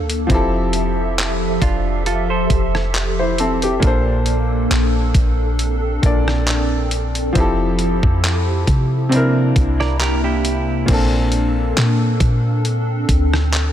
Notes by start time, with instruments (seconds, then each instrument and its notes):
Already playing: 808-style bass D2, grand piano A#2 A#3 D4 A4 C5, analog synth pad A#3 D4 A4
0.10 closed hi-hat
0.27 808-style bass F1, grand piano F3 C4 E4, analog synth pad F3 G4 A4 E5, kick, closed hi-hat
0.32 grand piano G4 A4
0.73 closed hi-hat
1.19 clap, closed hi-hat
1.62 808-style bass F1, clean electric guitar D4 F4, kick, closed hi-hat
2.06 clean electric guitar F4 A4, closed hi-hat
2.30 clean electric guitar A4 C5
2.50 808-style bass F1, kick, closed hi-hat
2.75 cross-stick
2.95 clap, closed hi-hat
3.19 grand piano E4 C5
3.38 grand piano C4 A4, closed hi-hat
3.62 grand piano G4, closed hi-hat
3.80 808-style bass A#1, grand piano A#2 A#3 D4, analog synth pad A#3 D4 A4, kick, closed hi-hat
3.85 grand piano A4 C5
4.26 closed hi-hat
4.71 808-style bass A#1, clap, closed hi-hat
5.14 808-style bass A#1, kick, closed hi-hat
5.59 analog synth pad C4, closed hi-hat
6.02 808-style bass A#1, grand piano A#2 A#3 D4 A4 D5, kick, closed hi-hat
6.28 cross-stick
6.47 clap, closed hi-hat
6.91 closed hi-hat
7.15 closed hi-hat
7.33 808-style bass F1, grand piano F3 C4 E4, analog synth pad F3 E4 G4 A4, kick, closed hi-hat
7.38 grand piano G4 A4
7.79 closed hi-hat
8.03 808-style bass F2, kick
8.24 clap, closed hi-hat
8.67 808-style bass C3, kick, closed hi-hat
9.09 grand piano C3 C4 D4, analog synth pad C3 A#3 D4 E4, closed hi-hat
9.15 grand piano E4 A#4
9.56 808-style bass C2, kick, closed hi-hat
9.80 clean electric guitar A#4 D5, cross-stick
10.00 clean electric guitar G4 A#4, clap, closed hi-hat
10.24 clean electric guitar E4 G4
10.45 closed hi-hat
10.86 808-style bass A#1, grand piano A#2 A#3 C4, analog synth pad A#3 D4 A4, kick, closed hi-hat, crash
10.91 grand piano D4 A4
11.32 closed hi-hat
11.77 808-style bass A#2, clap, closed hi-hat
12.20 808-style bass A#2, kick, closed hi-hat
12.65 analog synth pad C4, closed hi-hat
13.09 808-style bass D2, kick, closed hi-hat
13.34 cross-stick
13.53 clap, closed hi-hat